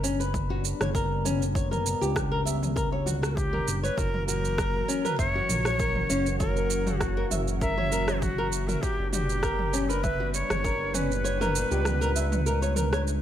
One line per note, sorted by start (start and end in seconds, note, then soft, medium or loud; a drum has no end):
0.00 0.74 F#1 medium
0.00 3.98 G3 medium
0.00 3.98 B3 medium
0.00 0.19 C#4 medium
0.00 3.98 D4 medium
0.04 shaker medium
0.20 0.49 B4 medium
0.20 shaker soft
0.34 kick medium
0.34 mid tom medium
0.34 shaker soft
0.50 0.64 F#4 medium
0.65 shaker medium
0.81 1.95 F#1 medium
0.81 0.89 C#5 medium
0.81 cross-stick medium
0.81 mid tom medium
0.81 shaker soft
0.95 1.24 A#4 medium
0.95 kick loud
0.95 shaker soft
1.25 1.41 C#4 medium
1.25 mid tom medium
1.25 shaker medium
1.42 shaker soft
1.55 1.71 C#5 medium
1.55 kick loud
1.55 shaker soft
1.71 2.00 A#4 medium
1.71 mid tom medium
1.71 shaker soft
1.86 shaker medium
2.01 3.61 C#2 loud
2.01 2.30 G4 medium
2.01 shaker soft
2.16 kick loud
2.16 cross-stick medium
2.16 mid tom medium
2.16 shaker soft
2.31 2.40 A#4 medium
2.45 2.55 E5 medium
2.45 shaker medium
2.63 mid tom medium
2.63 shaker soft
2.76 2.92 A#4 medium
2.76 kick loud
2.76 shaker soft
2.92 3.05 C#5 medium
3.06 3.16 F#4 medium
3.06 mid tom medium
3.06 shaker medium
3.22 3.36 F#4 medium
3.22 cross-stick medium
3.22 shaker soft
3.30 3.38 A#4 medium
3.36 3.82 G4 loud
3.36 kick loud
3.36 shaker soft
3.53 3.66 A#4 medium
3.53 mid tom medium
3.68 3.90 F#1 medium
3.68 shaker medium
3.83 3.98 B4 medium
3.83 3.96 C#5 medium
3.83 shaker soft
3.97 4.83 F#1 medium
3.97 8.83 E3 medium
3.97 4.26 F#4 medium
3.97 4.26 A#4 medium
3.97 kick loud
3.97 shaker soft
4.06 8.82 F#3 medium
4.14 mid tom medium
4.19 8.82 F#4 medium
4.27 4.57 F#4 medium
4.27 5.06 A#4 loud
4.27 shaker medium
4.45 shaker soft
4.53 8.82 A#3 medium
4.58 4.87 A#4 medium
4.58 kick loud
4.58 cross-stick medium
4.58 mid tom medium
4.58 shaker soft
4.88 5.04 C#4 medium
4.88 shaker medium
5.04 8.83 C#4 medium
5.04 5.18 A#4 medium
5.04 5.18 B4 loud
5.04 mid tom medium
5.04 shaker soft
5.18 5.42 F#1 medium
5.18 6.36 C#5 loud
5.18 5.34 E5 medium
5.18 kick loud
5.18 shaker soft
5.35 5.49 F#4 medium
5.49 6.04 A#1 medium
5.49 mid tom medium
5.49 shaker medium
5.65 5.74 C#5 medium
5.65 cross-stick medium
5.65 shaker soft
5.79 6.09 A#4 medium
5.79 kick loud
5.79 shaker soft
5.96 mid tom medium
6.09 7.25 F#1 medium
6.09 6.25 C#4 medium
6.09 shaker medium
6.26 shaker soft
6.39 7.01 A#4 loud
6.39 6.56 C#5 medium
6.39 kick loud
6.39 mid tom medium
6.39 shaker soft
6.56 6.85 A#4 medium
6.56 shaker soft
6.70 shaker medium
6.87 7.15 F#4 medium
6.87 mid tom medium
6.87 shaker soft
6.99 7.34 F#4 medium
6.99 kick medium
6.99 cross-stick medium
6.99 shaker soft
7.17 7.25 A#4 medium
7.31 8.77 F#1 loud
7.31 7.41 E5 medium
7.31 mid tom medium
7.31 shaker medium
7.48 shaker soft
7.60 7.77 A#4 medium
7.60 8.22 E5 loud
7.60 kick loud
7.60 shaker soft
7.78 7.90 C#5 medium
7.78 mid tom medium
7.92 8.06 A#4 medium
7.92 shaker medium
8.08 8.16 C#5 medium
8.08 cross-stick medium
8.08 shaker soft
8.21 8.69 F#4 medium
8.21 kick medium
8.21 mid tom medium
8.21 shaker soft
8.38 8.46 A#4 medium
8.52 shaker medium
8.68 8.81 F#4 medium
8.68 8.83 A#4 medium
8.68 mid tom medium
8.68 shaker soft
8.82 13.22 D4 medium
8.82 9.11 F#4 medium
8.82 9.11 G4 medium
8.82 kick loud
8.82 shaker soft
8.96 10.43 F#1 medium
8.96 13.22 B3 medium
9.08 13.22 G3 medium
9.08 9.90 G4 loud
9.12 9.42 F#4 medium
9.12 mid tom medium
9.12 shaker medium
9.30 shaker soft
9.43 9.72 A#4 medium
9.43 kick medium
9.43 cross-stick medium
9.43 shaker soft
9.59 mid tom medium
9.73 9.89 C#4 medium
9.73 shaker medium
9.89 10.04 A#4 medium
9.89 10.02 B4 medium
9.89 shaker soft
10.03 10.33 B4 loud
10.03 10.18 E5 medium
10.03 kick medium
10.03 mid tom medium
10.03 shaker soft
10.20 10.33 F#4 medium
10.33 10.96 C#5 loud
10.33 shaker medium
10.50 11.65 F#1 medium
10.50 10.58 C#5 medium
10.50 cross-stick medium
10.50 mid tom medium
10.50 shaker soft
10.64 10.93 A#4 medium
10.64 kick medium
10.64 shaker soft
10.94 11.10 C#4 loud
10.94 13.07 B4 loud
10.94 mid tom medium
10.94 shaker medium
11.11 shaker soft
11.24 11.40 C#5 medium
11.24 shaker soft
11.41 11.70 A#4 medium
11.41 mid tom medium
11.41 shaker soft
11.55 shaker medium
11.71 13.22 C#2 medium
11.71 12.00 G4 medium
11.71 shaker soft
11.85 cross-stick medium
11.85 mid tom medium
11.85 shaker soft
12.01 12.10 A#4 medium
12.01 shaker soft
12.16 12.25 E5 medium
12.16 shaker medium
12.32 mid tom medium
12.32 shaker soft
12.46 12.62 A#4 medium
12.46 shaker soft
12.62 12.75 C#5 medium
12.62 shaker soft
12.76 12.91 A#4 medium
12.76 mid tom medium
12.76 shaker medium
12.93 13.01 C#5 medium
12.93 cross-stick medium
12.93 shaker soft
13.07 shaker soft